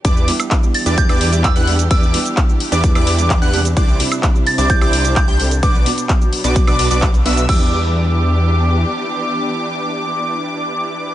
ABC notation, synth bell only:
X:1
M:4/4
L:1/8
Q:1/4=129
K:Em
V:1 name="Synth bell"
z3 a' g'2 e'2 | e'2 z6 | z3 a' g'2 g'2 | d'2 z6 |
e'8- | e'8 |]